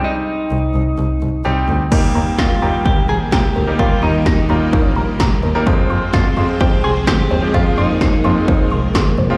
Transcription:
<<
  \new Staff \with { instrumentName = "Synth pluck" } { \time 4/4 \key ees \mixolydian \tempo 4 = 128 r1 | bes'8 bes''8 bes'''8 bes''8 bes'8 bes''8 bes''8 bes'8 | bes'8 bes''8 bes'''8 bes''8 bes'8 bes''8 bes''8 bes'8 | c''8 c'''8 c''''8 c'''8 c''8 c'''8 c'''8 c''8 |
c''8 c'''8 c''''8 c'''8 c''8 c'''8 c'''8 c''8 | }
  \new Staff \with { instrumentName = "Clean electric guitar" } { \time 4/4 \key ees \mixolydian ees'2. r4 | r4 f'4 g'8 aes'8 g'4 | f'8 ees'2 r4. | r4 f'4 g'8 aes'8 g'4 |
f'8 ees'2 r4. | }
  \new Staff \with { instrumentName = "Grand piano" } { \time 4/4 \key ees \mixolydian <g c' ees' g'>4 r2 <g c' ees' g'>8. r16 | <g bes ees' g'>4~ <g bes ees' g'>16 r16 <g bes ees' g'>4. r8. <g bes ees' g'>16 | <g bes ees' g'>4~ <g bes ees' g'>16 r16 <g bes ees' f'>4. r8. <g bes ees' bes'>16 | <f aes c' f'>4~ <f aes c' f'>16 r16 <f aes c' f'>4. r8. <f aes c' g'>16 |
<f aes c' f'>4~ <f aes c' f'>16 r16 <f aes c' f'>4. r8. <f aes c' f'>16 | }
  \new Staff \with { instrumentName = "String machine" } { \clef bass \time 4/4 \key ees \mixolydian << { r1 | bes1~ | bes1 | c'1 |
bes1 | } \\ { r1 | <ees g>1~ | <ees g>1 | <f aes>1~ |
<f aes>1 | } >> }
  \new Staff \with { instrumentName = "Double bass" } { \clef bass \time 4/4 \key ees \mixolydian r4 c,8 c,8 c,8 c,8 c,8 d,8 | ees,8 ees,8 ees,8 ees,8 ees,8 bes,,8 c,8 d,8 | ees,8 ees,8 ees,8 ees,8 ees,8 bes,,8 c,8 ees,8 | f,8 f,8 f,8 f,8 f,8 c,8 d,8 ees,8 |
f,8 f,8 f,8 f,8 f,8 c,8 d,8 f,,8 | }
  \new DrumStaff \with { instrumentName = "Drums" } \drummode { \time 4/4 r4 r4 r4 r4 | <cymc bd>4 <bd sn>4 bd4 <bd sn>4 | bd4 <bd sn>4 bd4 <bd sn>4 | bd4 <bd sn>4 bd4 <bd sn>4 |
bd4 <bd sn>4 bd4 <bd sn>4 | }
>>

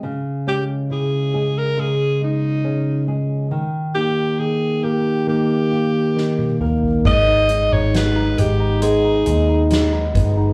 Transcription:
<<
  \new Staff \with { instrumentName = "Alto saxophone" } { \time 4/4 \key gis \minor \tempo 4 = 68 r8 g'8 gis'8. ais'16 gis'8 dis'4 r8 | r8 g'8 gis'8 g'8 g'4. r8 | dis''8. cis''16 b'8 g'8 gis'4 r4 | }
  \new Staff \with { instrumentName = "Nylon-string guitar" } { \time 4/4 \key gis \minor cis8 cis'8 e'8 gis'8 gis4 cis'8 gis'8 | dis8 dis'4 ais'8 ais8 g'8 dis'8 ais'8 | r8 dis'8 b4 b8 gis'8 dis'8 b8 | }
  \new Staff \with { instrumentName = "French horn section" } { \time 4/4 \key gis \minor r1 | r1 | <gis b dis'>1 | }
  \new Staff \with { instrumentName = "Tine electric piano" } { \clef bass \time 4/4 \key gis \minor cis8 gis8 cis8 gis8 cis8 gis8 cis8 gis8 | dis8 ais8 dis8 ais8 dis8 ais8 dis8 ais8 | gis16 dis'16 gis16 dis'16 gis16 dis'16 gis16 dis'16 gis16 dis'16 gis16 dis'16 gis16 dis'16 gis16 dis'16 | }
  \new Staff \with { instrumentName = "Fingered electric bass" } { \clef bass \time 4/4 \key gis \minor r1 | r1 | gis,,8. gis,,8. gis,,4 dis,4 g,,8 | }
  \new DrumStaff \with { instrumentName = "Drums" } \drummode { \time 4/4 r4 r4 r4 r4 | r4 r4 r4 sn16 tommh16 toml16 tomfh16 | <cymc bd>8 hh8 <hh sn>8 hh8 hh8 hh8 <hh sn>8 <hh bd>8 | }
>>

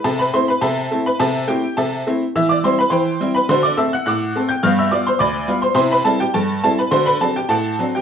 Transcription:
<<
  \new Staff \with { instrumentName = "Honky-tonk piano" } { \time 2/4 \key a \dorian \tempo 4 = 105 <a' a''>16 <b' b''>16 <c'' c'''>16 <b' b''>16 <a' e'' a''>8. <b' b''>16 | <a' e'' a''>8 <g' g''>8 <a' e'' a''>8 r8 | \key c \major <e'' e'''>16 <d'' d'''>16 <c'' c'''>16 <b' b''>16 <c'' g'' c'''>8. <b' b''>16 | <c'' c'''>16 <d'' d'''>16 <e'' e'''>16 <fis'' fis'''>16 <fis'' d''' fis'''>8. <g'' g'''>16 |
<f'' f'''>16 <e'' e'''>16 <d'' d'''>16 <c'' c'''>16 <d'' b'' d'''>8. <c'' c'''>16 | <c'' c'''>16 <b' b''>16 <a' a''>16 <g' g''>16 <a' a''>8 <a' a''>16 <b' b''>16 | <c'' c'''>16 <b' b''>16 <a' a''>16 <g' g''>16 <a' fis'' a''>8. <g' g''>16 | }
  \new Staff \with { instrumentName = "Honky-tonk piano" } { \time 2/4 \key a \dorian c8 <a c' e'>8 c8 <a c' e'>8 | c8 <a c' e'>8 c8 <a c' e'>8 | \key c \major e8 <g c' e'>8 e8 <g c' e'>8 | <d fis'>8 <a c' a'>8 a,8 <a c' a'>8 |
<g, b>8 <g b f'>8 d,8 <g b f'>8 | <c e'>8 <g c' e'>8 g,8 <g c' e'>8 | <d fis'>8 <fis c' d'>8 a,8 <fis c' d'>8 | }
>>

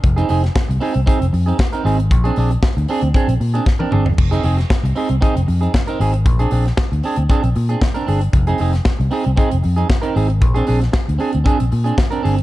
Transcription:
<<
  \new Staff \with { instrumentName = "Clean electric guitar" } { \time 4/4 \key f \dorian \tempo 4 = 116 r16 <c' ees' aes'>16 <c' ees' aes'>16 r8. <c' ees' aes'>16 r16 <c' ees' aes'>16 r8 <c' ees' aes'>16 r16 <c' ees' bes'>16 <c' ees' aes'>16 r16 | r16 <c' d' aes'>16 <c' d' aes'>16 r8. <c' d' aes'>16 r16 <c' d' aes'>16 r8 <c' d' aes'>16 r16 <c' d' bes'>16 <c' d' aes'>16 r16 | r16 <c' ees' aes'>16 <c' ees' aes'>16 r8. <c' ees' aes'>16 r16 <c' ees' aes'>16 r8 <c' ees' aes'>16 r16 <c' ees' bes'>16 <c' ees' aes'>16 r16 | r16 <c' d' aes'>16 <c' d' aes'>16 r8. <c' d' aes'>16 r16 <c' d' aes'>16 r8 <c' d' aes'>16 r16 <c' d' bes'>16 <c' d' aes'>16 r16 |
r16 <c' ees' aes'>16 <c' ees' aes'>16 r8. <c' ees' aes'>16 r16 <c' ees' aes'>16 r8 <c' ees' aes'>16 r16 <c' ees' bes'>16 <c' ees' aes'>16 r16 | r16 <c' d' aes'>16 <c' d' aes'>16 r8. <c' d' aes'>16 r16 <c' d' aes'>16 r8 <c' d' aes'>16 r16 <c' d' bes'>16 <c' d' aes'>16 r16 | }
  \new Staff \with { instrumentName = "Fingered electric bass" } { \clef bass \time 4/4 \key f \dorian f,,8 f,,8 r16 c,16 r16 c,16 r16 f,,16 f,8 r8 aes,,8 | bes,,8 bes,,8 r16 d,16 r16 d,16 r16 bes,,16 bes,8 r8 g,,8 | f,,8 f,,8 r16 c,16 r16 c,16 r16 f,,16 f,8 r8 aes,,8 | bes,,8 bes,,8 r16 d,16 r16 d,16 r16 bes,,16 bes,8 r8 g,,8 |
f,,8 f,,8 r16 c,16 r16 c,16 r16 f,,16 f,8 r8 aes,,8 | bes,,8 bes,,8 r16 d,16 r16 d,16 r16 bes,,16 bes,8 r8 g,,8 | }
  \new DrumStaff \with { instrumentName = "Drums" } \drummode { \time 4/4 <hh bd>16 hh16 hho16 <hh sn>16 <bd sn>16 hh16 hho16 hh16 <hh bd>16 hh16 hho16 hh16 <bd sn>16 hh16 hho16 hh16 | <hh bd>16 hh16 hho16 hh16 <bd sn>16 hh16 hho16 hh16 <hh bd>16 hh16 hho16 hh16 <bd sn>16 tommh16 toml16 tomfh16 | <cymc bd>16 hh16 hho16 <hh sn>16 <bd sn>16 hh16 hho16 hh16 <hh bd>16 hh16 hho16 hh16 <bd sn>16 hh16 hho16 hh16 | <hh bd>16 hh16 hho16 <hh sn>16 <bd sn>16 hh16 hho16 hh16 <hh bd>16 hh16 hho16 hh16 <bd sn>16 hh16 hho16 hh16 |
<hh bd>16 hh16 hho16 <hh sn>16 <bd sn>16 hh16 hho16 hh16 <hh bd>16 hh16 hho16 hh16 <bd sn>16 hh16 hho16 hh16 | <hh bd>16 hh16 hho16 <hh sn>16 <bd sn>16 hh16 hho16 hh16 <hh bd>16 hh16 hho16 hh16 <bd sn>16 hh16 hho16 hh16 | }
>>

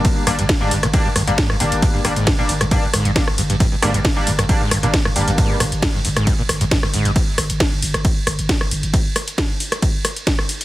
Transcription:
<<
  \new Staff \with { instrumentName = "Analog polysynth" } { \time 4/4 \key g \phrygian \tempo 4 = 135 <g bes d'>8 <g bes d'>16 r8 <g bes d'>16 r8 <g bes d'>16 r8 <g bes d'>16 r8 <g bes d'>8~ | <g bes d'>8 <g bes d'>16 r8 <g bes d'>16 r8 <g bes d'>16 r8. <g bes d'>16 r8. | r8 <g bes d'>16 r8 <g bes d'>16 r8 <g bes d'>16 r8 <g bes d'>16 r8 <g bes d'>8~ | <g bes d'>8 r2. r8 |
r1 | r1 | }
  \new Staff \with { instrumentName = "Acid bass" } { \clef bass \time 4/4 \key g \phrygian bes,16 r16 g,16 g,16 g,16 aes,16 g,16 bes,16 r16 g,16 g,16 g,16 aes,16 g,16 bes,16 r16 | g,16 g,16 g,16 aes,16 g,16 bes,16 r16 g,16 g,16 g,16 aes,16 g,16 bes,16 r16 g,16 g,16 | g,16 g,16 aes,16 g,16 bes,16 r16 g,16 g,16 g,16 aes,16 g,16 bes,16 r16 g,16 g,16 g,16 | aes,16 g,16 bes,16 r16 g,16 g,16 g,16 aes,16 g,16 bes,16 r16 g,16 g,16 g,16 aes,16 g,16 |
r1 | r1 | }
  \new Staff \with { instrumentName = "808-style bass" } { \clef bass \time 4/4 \key g \phrygian r8 g,,16 g,,16 r16 g,,16 g,,16 g,,16 r8 g,,16 g,,16 r16 g,,16 g,,16 g,,16 | r8 g,,16 g,,16 r16 g,,16 g,,16 g,,16 r8 g,,16 g,,16 r16 g,,16 g,,16 g,,16 | r8 g,,16 g,,16 r16 g,,16 g,,16 g,,16 r8 g,,16 g,,16 r16 g,,16 g,,16 g,,16 | r8 g,,16 g,,16 r16 g,,16 g,,16 g,,16 r8 g,,16 g,,16 r16 g,,16 g,,16 g,,16 |
r8 g,,16 g,,16 r16 g,,16 g,,16 g,,16 r8 g,,16 g,,16 r16 g,,16 g,,16 g,,16 | r1 | }
  \new DrumStaff \with { instrumentName = "Drums" } \drummode { \time 4/4 <hh bd cymr>8 <hho ss>16 hh16 <hh bd cymr sn>8 hho16 <hh ss>16 <hh bd cymr>8 <hho ss>16 hh16 <hh bd cymr sn>16 ss16 hho16 hh16 | <hh bd cymr>8 <hho ss>16 hh16 <hh bd cymr sn>8 hho16 <hh ss>16 <hh bd cymr>8 <hho ss>16 hh16 <hh bd cymr sn>16 ss16 hho16 hh16 | <hh bd cymr>8 <hho ss>16 hh16 <hh bd cymr sn>8 hho16 <hh ss>16 <hh bd cymr>8 <hho ss>16 hh16 <hh bd cymr sn>16 ss16 hho16 hh16 | <hh bd cymr>8 <hho ss>16 hh16 <hh bd cymr sn>8 hho16 <hh ss>16 <hh bd cymr>8 <hho ss>16 hh16 <hh bd cymr sn>16 ss16 hho16 hh16 |
<hh bd cymr>8 <hho ss>16 hh16 <hh bd cymr sn>8 hho16 <hh ss>16 <hh bd cymr>8 <hho ss>16 hh16 <hh bd cymr sn>16 ss16 hho16 hh16 | <hh bd cymr>8 <hho ss>16 hh16 <hh bd cymr sn>8 hho16 <hh ss>16 <hh bd cymr>8 <hho ss>16 hh16 <hh bd cymr sn>16 ss16 hho16 hh16 | }
>>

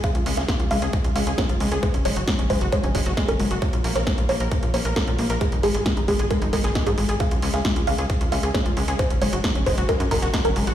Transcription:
<<
  \new Staff \with { instrumentName = "Synth pluck" } { \time 4/4 \key des \major \tempo 4 = 134 f''8 r16 f''8 r16 f''8. r16 f''16 r16 des''8. r16 | c''16 r16 des''8. r16 c''16 r16 des''16 r16 des''8 r16 bes'8 r16 | des''8 r16 des''8 r16 des''8. r16 des''16 r16 bes'8. r16 | aes'16 r16 aes'8. r16 aes'16 r16 bes'16 r16 bes'8 r16 aes'8 r16 |
f''8 r16 f''8 r16 f''8. r16 f''16 r16 des''8. r16 | c''16 r16 des''8. r16 c''16 r16 bes'16 r16 bes'8 r16 bes'8 r16 | }
  \new Staff \with { instrumentName = "Synth arpeggio sound" } { \time 4/4 \key des \major aes16 f'16 aes16 aes'16 aes16 f'16 aes16 aes'16 aes16 f'16 aes16 aes'16 aes16 f'16 aes16 aes'16 | aes16 des'16 aes16 ges'16 aes16 des'16 aes16 ges'16 aes16 des'16 aes16 ges'16 aes16 des'16 aes16 ges'16 | bes16 f'16 bes16 bes'16 bes16 f'16 bes16 bes'16 bes16 f'16 bes16 bes'16 bes16 f'16 bes16 bes'16 | aes16 ees'16 aes16 aes'16 aes16 ees'16 aes16 aes'16 aes16 ees'16 aes16 aes'16 aes16 ees'16 aes16 aes'16 |
aes16 f'16 aes16 aes'16 aes16 f'16 aes16 aes'16 aes16 f'16 aes16 aes'16 aes16 f'16 aes16 aes'16 | aes16 des'16 aes16 ges'16 aes16 des'16 aes16 ges'16 aes16 des'16 aes16 ges'16 aes16 des'16 aes16 ges'16 | }
  \new Staff \with { instrumentName = "Analog synth bass" } { \clef bass \time 4/4 \key des \major r16 des,16 des,16 des,16 r16 des,16 des,16 des,16 r16 des,16 des,16 des,16 r16 aes,,16 des,16 des,16 | r16 ges,,16 ges,,16 ges,,16 r16 ges,,16 ges,,16 ges,,16 r16 ges,,16 ges,,16 ges,,16 r16 ges,,16 ges,,16 ges,,16 | r16 bes,,16 bes,,16 bes,,16 r16 bes,,16 bes,,16 bes,,16 r16 bes,,16 bes,,16 bes,,16 r16 bes,16 bes,,16 bes,,16 | r16 aes,,16 aes,,16 aes,,16 r16 aes,,16 aes,,16 aes,,16 r16 aes,,16 aes,,16 aes,,16 r16 aes,16 aes,,16 aes,,16 |
r16 des,16 des,16 des,16 r16 des,16 des,16 des,16 r16 des,16 des,16 des,16 r16 aes,,16 des,16 des,16 | r16 ges,,16 ges,,16 ges,,16 r16 ges,,16 ges,,16 ges,,16 r16 ges,16 ges,,16 ges,,16 r16 ges,,16 ges,,16 aes,,16 | }
  \new DrumStaff \with { instrumentName = "Drums" } \drummode { \time 4/4 <hh bd>16 hh16 hho16 <hh sn>16 <hh bd sn>16 hh16 hho16 hh16 <hh bd>16 hh16 hho16 hh16 <hh bd sn>16 hh16 hho16 hh16 | <hh bd>16 hh16 hho16 hh16 <hh bd sn>16 hh16 <hho bd>16 hh16 <hh bd>16 hh16 <hho bd>16 <hh sn>16 <hh bd sn>16 hh16 hho16 hh16 | <hh bd>16 hh16 hho16 <hh sn>16 <hh bd sn>16 hh16 hho16 hh16 <hh bd>16 hh16 hho16 hh16 <hh bd sn>16 hh16 hho16 hh16 | <hh bd>16 hh16 hho16 hh16 <hh bd sn>16 hh16 <hho bd>16 hh16 <hh bd>16 hh16 <hho bd>16 <hh sn>16 <hh bd sn>16 hh16 hho16 hh16 |
<hh bd>16 hh16 hho16 <hh sn>16 <hh bd sn>16 hh16 hho16 hh16 <hh bd>16 hh16 hho16 hh16 <hh bd sn>16 hh16 hho16 hh16 | <hh bd>16 hh16 hho16 hh16 <hh bd sn>16 hh16 <hho bd>16 hh16 <hh bd>16 hh16 <hho bd>16 <hh sn>16 <hh bd sn>16 hh16 hho16 hh16 | }
>>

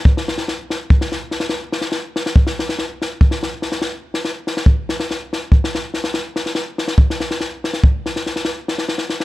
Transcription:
\new DrumStaff \with { instrumentName = "Drums" } \drummode { \time 11/8 \tempo 4 = 143 bd16 sn16 sn16 sn16 sn8 sn8 bd16 sn16 sn8 sn16 sn16 sn8 sn16 sn16 sn8 sn16 sn16 | bd16 sn16 sn16 sn16 sn8 sn8 bd16 sn16 sn8 sn16 sn16 sn8. sn16 sn8 sn16 sn16 | bd8 sn16 sn16 sn8 sn8 bd16 sn16 sn8 sn16 sn16 sn8 sn16 sn16 sn8 sn16 sn16 | bd16 sn16 sn16 sn16 sn8 sn16 sn16 bd8 sn16 sn16 sn16 sn16 sn8 sn16 sn16 sn16 sn16 sn16 sn16 | }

